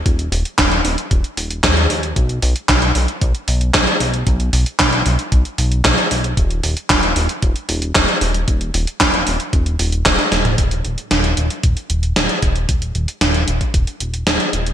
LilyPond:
<<
  \new Staff \with { instrumentName = "Analog synth bass" } { \clef bass \time 4/4 \key ces \major \tempo 4 = 114 ees,,8 ees,,8 ees,,8 ees,,8 ees,,8 ees,,8 ees,8 ees,8 | ces,8 ces,8 ces,8 ces,8 ces,8 ces,8 ces,8 ces,8 | ces,8 ces,8 ces,8 ces,8 ces,8 ces,8 ces,8 ces,8 | ees,,8 ees,,8 ees,,8 ees,,8 ees,,8 ees,,8 ees,,8 ees,,8 |
ees,,8 ees,,8 ees,,8 ees,,8 ees,,8 ees,,8 ees,,8 ees,,8 | ees,,8 ees,,8 ees,,8 ees,,8 ees,,8 ees,,8 ees,,8 ees,,8 | ees,,8 ees,,8 ees,,8 ees,,8 ees,,8 ees,,8 ees,,8 ees,,8 | }
  \new DrumStaff \with { instrumentName = "Drums" } \drummode { \time 4/4 <hh bd>16 hh16 hho16 hh16 <hc hh bd sn>16 hh16 hho16 hh16 <hh bd>16 hh16 hho16 hh16 <hc hh bd sn>16 hh16 hho16 hh16 | <hh bd>16 hh16 hho16 hh16 <hc hh bd sn>16 hh16 hho16 hh16 <hh bd>16 hh16 hho16 hh16 <hc hh bd sn>16 hh16 hho16 hh16 | <hh bd>16 hh16 hho16 hh16 <hc hh bd sn>16 hh16 hho16 hh16 <hh bd>16 hh16 hho16 hh16 <hc hh bd sn>16 hh16 hho16 hh16 | <hh bd>16 hh16 hho16 hh16 <hc hh bd sn>16 hh16 hho16 hh16 <hh bd>16 hh16 hho16 hh16 <hc hh bd sn>16 hh16 hho16 hh16 |
<hh bd>16 hh16 hho16 hh16 <hc hh bd sn>16 hh16 hho16 hh16 <hh bd>16 hh16 hho16 hh16 <hc hh bd sn>16 <hh sn>16 <hho sn>16 <hh toml>16 | <hh bd>16 hh16 hh16 hh16 <hh sn>16 hh16 hh16 hh16 <hh bd>16 hh16 hh16 hh16 <hh sn>16 hh16 <hh bd>16 hh16 | <hh bd>16 hh16 hh16 hh16 <hh sn>16 hh16 hh16 <hh bd>16 <hh bd>16 hh16 hh16 hh16 <hh sn>16 hh16 hh16 hh16 | }
>>